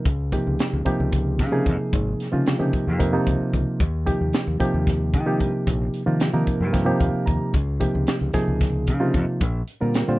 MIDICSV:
0, 0, Header, 1, 5, 480
1, 0, Start_track
1, 0, Tempo, 534759
1, 48, Time_signature, 7, 3, 24, 8
1, 9147, End_track
2, 0, Start_track
2, 0, Title_t, "Reed electric piano"
2, 0, Program_c, 0, 4
2, 290, Note_on_c, 0, 48, 82
2, 291, Note_on_c, 0, 53, 70
2, 294, Note_on_c, 0, 58, 80
2, 294, Note_on_c, 0, 63, 78
2, 295, Note_on_c, 0, 67, 87
2, 739, Note_off_c, 0, 48, 0
2, 739, Note_off_c, 0, 53, 0
2, 740, Note_off_c, 0, 58, 0
2, 741, Note_off_c, 0, 63, 0
2, 741, Note_off_c, 0, 67, 0
2, 765, Note_on_c, 0, 53, 81
2, 766, Note_on_c, 0, 48, 95
2, 771, Note_on_c, 0, 58, 83
2, 771, Note_on_c, 0, 63, 76
2, 773, Note_on_c, 0, 67, 98
2, 1329, Note_off_c, 0, 48, 0
2, 1329, Note_off_c, 0, 53, 0
2, 1332, Note_off_c, 0, 58, 0
2, 1332, Note_off_c, 0, 63, 0
2, 1333, Note_off_c, 0, 67, 0
2, 1361, Note_on_c, 0, 48, 91
2, 1361, Note_on_c, 0, 53, 72
2, 1366, Note_on_c, 0, 58, 78
2, 1367, Note_on_c, 0, 63, 84
2, 1370, Note_on_c, 0, 68, 102
2, 2040, Note_off_c, 0, 48, 0
2, 2040, Note_off_c, 0, 53, 0
2, 2042, Note_off_c, 0, 58, 0
2, 2042, Note_off_c, 0, 63, 0
2, 2044, Note_off_c, 0, 68, 0
2, 2082, Note_on_c, 0, 48, 81
2, 2084, Note_on_c, 0, 53, 68
2, 2085, Note_on_c, 0, 58, 71
2, 2086, Note_on_c, 0, 63, 72
2, 2088, Note_on_c, 0, 65, 91
2, 2312, Note_off_c, 0, 48, 0
2, 2312, Note_off_c, 0, 53, 0
2, 2313, Note_off_c, 0, 58, 0
2, 2314, Note_off_c, 0, 63, 0
2, 2314, Note_off_c, 0, 65, 0
2, 2324, Note_on_c, 0, 53, 66
2, 2325, Note_on_c, 0, 48, 75
2, 2329, Note_on_c, 0, 58, 75
2, 2330, Note_on_c, 0, 63, 75
2, 2333, Note_on_c, 0, 67, 90
2, 2665, Note_off_c, 0, 53, 0
2, 2666, Note_off_c, 0, 48, 0
2, 2667, Note_off_c, 0, 58, 0
2, 2668, Note_off_c, 0, 63, 0
2, 2670, Note_off_c, 0, 67, 0
2, 2680, Note_on_c, 0, 53, 63
2, 2685, Note_on_c, 0, 48, 80
2, 2686, Note_on_c, 0, 63, 69
2, 2687, Note_on_c, 0, 58, 67
2, 2689, Note_on_c, 0, 70, 77
2, 2795, Note_off_c, 0, 48, 0
2, 2795, Note_off_c, 0, 53, 0
2, 2802, Note_off_c, 0, 58, 0
2, 2802, Note_off_c, 0, 63, 0
2, 2803, Note_off_c, 0, 70, 0
2, 2806, Note_on_c, 0, 48, 81
2, 2806, Note_on_c, 0, 53, 69
2, 2812, Note_on_c, 0, 58, 73
2, 2812, Note_on_c, 0, 63, 75
2, 2812, Note_on_c, 0, 65, 89
2, 3410, Note_off_c, 0, 48, 0
2, 3410, Note_off_c, 0, 53, 0
2, 3413, Note_off_c, 0, 58, 0
2, 3413, Note_off_c, 0, 63, 0
2, 3413, Note_off_c, 0, 65, 0
2, 3643, Note_on_c, 0, 48, 78
2, 3645, Note_on_c, 0, 53, 76
2, 3646, Note_on_c, 0, 63, 78
2, 3648, Note_on_c, 0, 58, 73
2, 3649, Note_on_c, 0, 67, 101
2, 4097, Note_off_c, 0, 48, 0
2, 4098, Note_off_c, 0, 53, 0
2, 4099, Note_off_c, 0, 63, 0
2, 4100, Note_off_c, 0, 58, 0
2, 4101, Note_off_c, 0, 67, 0
2, 4127, Note_on_c, 0, 53, 89
2, 4129, Note_on_c, 0, 48, 97
2, 4129, Note_on_c, 0, 58, 79
2, 4131, Note_on_c, 0, 63, 85
2, 4133, Note_on_c, 0, 67, 102
2, 4692, Note_off_c, 0, 48, 0
2, 4692, Note_off_c, 0, 53, 0
2, 4693, Note_off_c, 0, 58, 0
2, 4693, Note_off_c, 0, 63, 0
2, 4695, Note_off_c, 0, 67, 0
2, 4721, Note_on_c, 0, 58, 90
2, 4723, Note_on_c, 0, 48, 84
2, 4724, Note_on_c, 0, 53, 79
2, 4726, Note_on_c, 0, 63, 87
2, 4729, Note_on_c, 0, 67, 98
2, 5401, Note_off_c, 0, 48, 0
2, 5401, Note_off_c, 0, 58, 0
2, 5402, Note_off_c, 0, 53, 0
2, 5403, Note_off_c, 0, 63, 0
2, 5404, Note_off_c, 0, 67, 0
2, 5439, Note_on_c, 0, 48, 79
2, 5441, Note_on_c, 0, 53, 71
2, 5443, Note_on_c, 0, 58, 76
2, 5443, Note_on_c, 0, 63, 73
2, 5446, Note_on_c, 0, 65, 92
2, 5671, Note_off_c, 0, 48, 0
2, 5672, Note_off_c, 0, 53, 0
2, 5673, Note_off_c, 0, 58, 0
2, 5673, Note_off_c, 0, 63, 0
2, 5674, Note_off_c, 0, 65, 0
2, 5686, Note_on_c, 0, 48, 82
2, 5686, Note_on_c, 0, 53, 76
2, 5687, Note_on_c, 0, 58, 82
2, 5688, Note_on_c, 0, 63, 74
2, 5690, Note_on_c, 0, 70, 93
2, 6026, Note_off_c, 0, 48, 0
2, 6026, Note_off_c, 0, 53, 0
2, 6026, Note_off_c, 0, 58, 0
2, 6027, Note_off_c, 0, 63, 0
2, 6028, Note_off_c, 0, 70, 0
2, 6040, Note_on_c, 0, 48, 78
2, 6040, Note_on_c, 0, 53, 69
2, 6043, Note_on_c, 0, 58, 72
2, 6046, Note_on_c, 0, 63, 64
2, 6047, Note_on_c, 0, 67, 77
2, 6140, Note_off_c, 0, 48, 0
2, 6142, Note_off_c, 0, 53, 0
2, 6144, Note_off_c, 0, 58, 0
2, 6144, Note_off_c, 0, 63, 0
2, 6149, Note_off_c, 0, 67, 0
2, 6151, Note_on_c, 0, 48, 84
2, 6153, Note_on_c, 0, 53, 74
2, 6155, Note_on_c, 0, 58, 79
2, 6155, Note_on_c, 0, 63, 78
2, 6160, Note_on_c, 0, 67, 93
2, 6279, Note_on_c, 0, 77, 70
2, 6508, Note_off_c, 0, 77, 0
2, 6516, Note_on_c, 0, 82, 62
2, 6747, Note_off_c, 0, 82, 0
2, 6761, Note_off_c, 0, 48, 0
2, 6762, Note_off_c, 0, 53, 0
2, 6763, Note_off_c, 0, 58, 0
2, 6763, Note_off_c, 0, 63, 0
2, 6766, Note_off_c, 0, 67, 0
2, 7001, Note_on_c, 0, 58, 77
2, 7002, Note_on_c, 0, 48, 92
2, 7002, Note_on_c, 0, 63, 78
2, 7003, Note_on_c, 0, 53, 78
2, 7005, Note_on_c, 0, 67, 91
2, 7454, Note_off_c, 0, 48, 0
2, 7454, Note_off_c, 0, 58, 0
2, 7454, Note_off_c, 0, 63, 0
2, 7455, Note_off_c, 0, 53, 0
2, 7456, Note_off_c, 0, 67, 0
2, 7483, Note_on_c, 0, 48, 84
2, 7483, Note_on_c, 0, 53, 85
2, 7485, Note_on_c, 0, 58, 75
2, 7486, Note_on_c, 0, 63, 79
2, 7487, Note_on_c, 0, 68, 101
2, 8046, Note_off_c, 0, 48, 0
2, 8046, Note_off_c, 0, 53, 0
2, 8047, Note_off_c, 0, 58, 0
2, 8047, Note_off_c, 0, 63, 0
2, 8048, Note_off_c, 0, 68, 0
2, 8075, Note_on_c, 0, 48, 97
2, 8077, Note_on_c, 0, 53, 82
2, 8078, Note_on_c, 0, 63, 74
2, 8079, Note_on_c, 0, 65, 98
2, 8081, Note_on_c, 0, 58, 79
2, 8441, Note_off_c, 0, 48, 0
2, 8442, Note_off_c, 0, 53, 0
2, 8442, Note_off_c, 0, 63, 0
2, 8443, Note_off_c, 0, 65, 0
2, 8444, Note_off_c, 0, 58, 0
2, 8802, Note_on_c, 0, 55, 72
2, 8803, Note_on_c, 0, 50, 77
2, 8807, Note_on_c, 0, 60, 69
2, 8807, Note_on_c, 0, 65, 77
2, 8809, Note_on_c, 0, 70, 83
2, 9028, Note_off_c, 0, 50, 0
2, 9028, Note_off_c, 0, 55, 0
2, 9030, Note_off_c, 0, 60, 0
2, 9030, Note_off_c, 0, 65, 0
2, 9031, Note_off_c, 0, 70, 0
2, 9047, Note_on_c, 0, 50, 78
2, 9050, Note_on_c, 0, 55, 74
2, 9050, Note_on_c, 0, 60, 76
2, 9053, Note_on_c, 0, 65, 82
2, 9055, Note_on_c, 0, 72, 89
2, 9147, Note_off_c, 0, 50, 0
2, 9147, Note_off_c, 0, 55, 0
2, 9147, Note_off_c, 0, 60, 0
2, 9147, Note_off_c, 0, 65, 0
2, 9147, Note_off_c, 0, 72, 0
2, 9147, End_track
3, 0, Start_track
3, 0, Title_t, "Fingered electric bass"
3, 0, Program_c, 1, 33
3, 49, Note_on_c, 1, 37, 94
3, 320, Note_off_c, 1, 37, 0
3, 421, Note_on_c, 1, 37, 78
3, 506, Note_off_c, 1, 37, 0
3, 657, Note_on_c, 1, 37, 87
3, 744, Note_off_c, 1, 37, 0
3, 897, Note_on_c, 1, 37, 90
3, 1253, Note_on_c, 1, 49, 75
3, 1266, Note_off_c, 1, 37, 0
3, 1492, Note_on_c, 1, 41, 72
3, 1506, Note_off_c, 1, 49, 0
3, 1582, Note_off_c, 1, 41, 0
3, 1733, Note_on_c, 1, 32, 96
3, 1913, Note_off_c, 1, 32, 0
3, 2097, Note_on_c, 1, 49, 83
3, 2275, Note_off_c, 1, 49, 0
3, 2336, Note_on_c, 1, 49, 74
3, 2425, Note_off_c, 1, 49, 0
3, 2578, Note_on_c, 1, 41, 76
3, 2847, Note_off_c, 1, 41, 0
3, 2935, Note_on_c, 1, 37, 72
3, 3025, Note_off_c, 1, 37, 0
3, 3176, Note_on_c, 1, 37, 69
3, 3265, Note_off_c, 1, 37, 0
3, 3414, Note_on_c, 1, 39, 98
3, 3685, Note_off_c, 1, 39, 0
3, 3777, Note_on_c, 1, 39, 75
3, 3866, Note_off_c, 1, 39, 0
3, 4015, Note_on_c, 1, 39, 84
3, 4105, Note_off_c, 1, 39, 0
3, 4254, Note_on_c, 1, 39, 86
3, 4611, Note_on_c, 1, 51, 90
3, 4625, Note_off_c, 1, 39, 0
3, 4852, Note_off_c, 1, 51, 0
3, 4852, Note_on_c, 1, 43, 72
3, 4943, Note_off_c, 1, 43, 0
3, 5093, Note_on_c, 1, 34, 94
3, 5274, Note_off_c, 1, 34, 0
3, 5450, Note_on_c, 1, 51, 76
3, 5632, Note_off_c, 1, 51, 0
3, 5689, Note_on_c, 1, 51, 84
3, 5781, Note_off_c, 1, 51, 0
3, 5926, Note_on_c, 1, 43, 75
3, 6199, Note_off_c, 1, 43, 0
3, 6287, Note_on_c, 1, 39, 78
3, 6379, Note_off_c, 1, 39, 0
3, 6529, Note_on_c, 1, 39, 75
3, 6621, Note_off_c, 1, 39, 0
3, 6768, Note_on_c, 1, 37, 98
3, 7040, Note_off_c, 1, 37, 0
3, 7134, Note_on_c, 1, 37, 87
3, 7223, Note_off_c, 1, 37, 0
3, 7370, Note_on_c, 1, 37, 83
3, 7461, Note_off_c, 1, 37, 0
3, 7609, Note_on_c, 1, 37, 80
3, 7968, Note_on_c, 1, 49, 80
3, 7982, Note_off_c, 1, 37, 0
3, 8207, Note_on_c, 1, 41, 71
3, 8220, Note_off_c, 1, 49, 0
3, 8297, Note_off_c, 1, 41, 0
3, 8450, Note_on_c, 1, 34, 107
3, 8629, Note_off_c, 1, 34, 0
3, 8815, Note_on_c, 1, 46, 73
3, 8992, Note_off_c, 1, 46, 0
3, 9052, Note_on_c, 1, 46, 75
3, 9140, Note_off_c, 1, 46, 0
3, 9147, End_track
4, 0, Start_track
4, 0, Title_t, "Muted fingered electric bass strokes"
4, 5810, Note_on_c, 9, 29, 39
4, 5900, Note_off_c, 9, 29, 0
4, 6408, Note_on_c, 9, 29, 35
4, 6498, Note_off_c, 9, 29, 0
4, 9147, End_track
5, 0, Start_track
5, 0, Title_t, "Drums"
5, 49, Note_on_c, 9, 36, 106
5, 49, Note_on_c, 9, 42, 72
5, 139, Note_off_c, 9, 36, 0
5, 139, Note_off_c, 9, 42, 0
5, 290, Note_on_c, 9, 36, 68
5, 291, Note_on_c, 9, 42, 60
5, 380, Note_off_c, 9, 36, 0
5, 381, Note_off_c, 9, 42, 0
5, 531, Note_on_c, 9, 42, 75
5, 542, Note_on_c, 9, 38, 100
5, 621, Note_off_c, 9, 42, 0
5, 631, Note_off_c, 9, 38, 0
5, 770, Note_on_c, 9, 36, 71
5, 772, Note_on_c, 9, 42, 54
5, 860, Note_off_c, 9, 36, 0
5, 862, Note_off_c, 9, 42, 0
5, 1010, Note_on_c, 9, 36, 84
5, 1010, Note_on_c, 9, 42, 72
5, 1099, Note_off_c, 9, 42, 0
5, 1100, Note_off_c, 9, 36, 0
5, 1248, Note_on_c, 9, 42, 61
5, 1250, Note_on_c, 9, 36, 84
5, 1259, Note_on_c, 9, 38, 35
5, 1338, Note_off_c, 9, 42, 0
5, 1340, Note_off_c, 9, 36, 0
5, 1349, Note_off_c, 9, 38, 0
5, 1491, Note_on_c, 9, 36, 77
5, 1492, Note_on_c, 9, 42, 51
5, 1581, Note_off_c, 9, 36, 0
5, 1582, Note_off_c, 9, 42, 0
5, 1732, Note_on_c, 9, 36, 106
5, 1732, Note_on_c, 9, 42, 74
5, 1821, Note_off_c, 9, 42, 0
5, 1822, Note_off_c, 9, 36, 0
5, 1976, Note_on_c, 9, 42, 62
5, 1987, Note_on_c, 9, 38, 30
5, 2066, Note_off_c, 9, 42, 0
5, 2077, Note_off_c, 9, 38, 0
5, 2211, Note_on_c, 9, 42, 81
5, 2222, Note_on_c, 9, 38, 100
5, 2301, Note_off_c, 9, 42, 0
5, 2312, Note_off_c, 9, 38, 0
5, 2453, Note_on_c, 9, 36, 72
5, 2455, Note_on_c, 9, 42, 49
5, 2543, Note_off_c, 9, 36, 0
5, 2545, Note_off_c, 9, 42, 0
5, 2693, Note_on_c, 9, 36, 84
5, 2693, Note_on_c, 9, 42, 77
5, 2782, Note_off_c, 9, 42, 0
5, 2783, Note_off_c, 9, 36, 0
5, 2933, Note_on_c, 9, 36, 73
5, 2937, Note_on_c, 9, 42, 71
5, 3023, Note_off_c, 9, 36, 0
5, 3027, Note_off_c, 9, 42, 0
5, 3173, Note_on_c, 9, 36, 75
5, 3173, Note_on_c, 9, 42, 55
5, 3262, Note_off_c, 9, 36, 0
5, 3262, Note_off_c, 9, 42, 0
5, 3412, Note_on_c, 9, 36, 102
5, 3413, Note_on_c, 9, 42, 83
5, 3502, Note_off_c, 9, 36, 0
5, 3503, Note_off_c, 9, 42, 0
5, 3652, Note_on_c, 9, 36, 59
5, 3653, Note_on_c, 9, 42, 56
5, 3742, Note_off_c, 9, 36, 0
5, 3742, Note_off_c, 9, 42, 0
5, 3889, Note_on_c, 9, 42, 79
5, 3900, Note_on_c, 9, 38, 108
5, 3979, Note_off_c, 9, 42, 0
5, 3989, Note_off_c, 9, 38, 0
5, 4131, Note_on_c, 9, 36, 75
5, 4131, Note_on_c, 9, 42, 57
5, 4221, Note_off_c, 9, 36, 0
5, 4221, Note_off_c, 9, 42, 0
5, 4371, Note_on_c, 9, 36, 92
5, 4371, Note_on_c, 9, 42, 75
5, 4381, Note_on_c, 9, 38, 32
5, 4460, Note_off_c, 9, 42, 0
5, 4461, Note_off_c, 9, 36, 0
5, 4471, Note_off_c, 9, 38, 0
5, 4610, Note_on_c, 9, 42, 61
5, 4611, Note_on_c, 9, 36, 83
5, 4700, Note_off_c, 9, 36, 0
5, 4700, Note_off_c, 9, 42, 0
5, 4851, Note_on_c, 9, 36, 70
5, 4851, Note_on_c, 9, 42, 50
5, 4940, Note_off_c, 9, 36, 0
5, 4940, Note_off_c, 9, 42, 0
5, 5090, Note_on_c, 9, 36, 96
5, 5090, Note_on_c, 9, 42, 76
5, 5180, Note_off_c, 9, 36, 0
5, 5180, Note_off_c, 9, 42, 0
5, 5330, Note_on_c, 9, 42, 55
5, 5420, Note_off_c, 9, 42, 0
5, 5565, Note_on_c, 9, 42, 74
5, 5576, Note_on_c, 9, 38, 102
5, 5655, Note_off_c, 9, 42, 0
5, 5666, Note_off_c, 9, 38, 0
5, 5807, Note_on_c, 9, 42, 54
5, 5809, Note_on_c, 9, 36, 73
5, 5897, Note_off_c, 9, 42, 0
5, 5898, Note_off_c, 9, 36, 0
5, 6047, Note_on_c, 9, 42, 64
5, 6048, Note_on_c, 9, 36, 78
5, 6058, Note_on_c, 9, 38, 28
5, 6137, Note_off_c, 9, 42, 0
5, 6138, Note_off_c, 9, 36, 0
5, 6148, Note_off_c, 9, 38, 0
5, 6286, Note_on_c, 9, 42, 66
5, 6287, Note_on_c, 9, 36, 81
5, 6376, Note_off_c, 9, 42, 0
5, 6377, Note_off_c, 9, 36, 0
5, 6529, Note_on_c, 9, 36, 70
5, 6529, Note_on_c, 9, 42, 57
5, 6618, Note_off_c, 9, 36, 0
5, 6619, Note_off_c, 9, 42, 0
5, 6765, Note_on_c, 9, 42, 68
5, 6767, Note_on_c, 9, 36, 95
5, 6855, Note_off_c, 9, 42, 0
5, 6857, Note_off_c, 9, 36, 0
5, 7006, Note_on_c, 9, 42, 60
5, 7008, Note_on_c, 9, 36, 66
5, 7096, Note_off_c, 9, 42, 0
5, 7098, Note_off_c, 9, 36, 0
5, 7243, Note_on_c, 9, 42, 77
5, 7254, Note_on_c, 9, 38, 104
5, 7333, Note_off_c, 9, 42, 0
5, 7343, Note_off_c, 9, 38, 0
5, 7481, Note_on_c, 9, 42, 63
5, 7486, Note_on_c, 9, 36, 78
5, 7492, Note_on_c, 9, 38, 32
5, 7571, Note_off_c, 9, 42, 0
5, 7576, Note_off_c, 9, 36, 0
5, 7582, Note_off_c, 9, 38, 0
5, 7726, Note_on_c, 9, 42, 77
5, 7727, Note_on_c, 9, 36, 89
5, 7736, Note_on_c, 9, 38, 29
5, 7815, Note_off_c, 9, 42, 0
5, 7817, Note_off_c, 9, 36, 0
5, 7826, Note_off_c, 9, 38, 0
5, 7962, Note_on_c, 9, 42, 67
5, 7967, Note_on_c, 9, 36, 78
5, 8052, Note_off_c, 9, 42, 0
5, 8056, Note_off_c, 9, 36, 0
5, 8203, Note_on_c, 9, 42, 53
5, 8206, Note_on_c, 9, 36, 73
5, 8293, Note_off_c, 9, 42, 0
5, 8295, Note_off_c, 9, 36, 0
5, 8443, Note_on_c, 9, 42, 77
5, 8446, Note_on_c, 9, 36, 106
5, 8533, Note_off_c, 9, 42, 0
5, 8536, Note_off_c, 9, 36, 0
5, 8685, Note_on_c, 9, 42, 53
5, 8775, Note_off_c, 9, 42, 0
5, 8924, Note_on_c, 9, 42, 75
5, 8935, Note_on_c, 9, 38, 99
5, 9014, Note_off_c, 9, 42, 0
5, 9025, Note_off_c, 9, 38, 0
5, 9147, End_track
0, 0, End_of_file